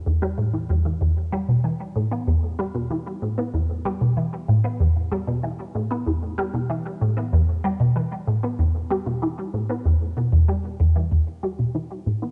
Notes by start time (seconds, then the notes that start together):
0.06 E2
0.22 G3
0.38 A2
0.54 E3
0.69 E2
0.85 E3
1.01 E2
1.32 G3
1.48 B2
1.64 E3
1.96 A2
2.11 B3
2.27 E2
2.59 G3
2.75 B2
2.91 E3
3.22 A2
3.38 B3
3.54 E2
3.85 G3
4.01 B2
4.17 E3
4.48 A2
4.64 B3
4.80 E2
5.12 G3
5.27 B2
5.43 E3
5.75 A2
5.91 B3
6.06 E2
6.38 G3
6.54 B2
6.70 E3
7.01 A2
7.17 B3
7.33 E2
7.64 G3
7.80 B2
7.96 E3
8.27 A2
8.43 B3
8.59 E2
8.91 G3
9.06 B2
9.22 E3
9.54 A2
9.70 B3
9.85 E2
10.17 B2
10.32 E2
10.48 G3
10.80 E2
10.96 E3
11.12 E2
11.43 G3
11.59 B2
11.75 E3
12.06 A2
12.22 B3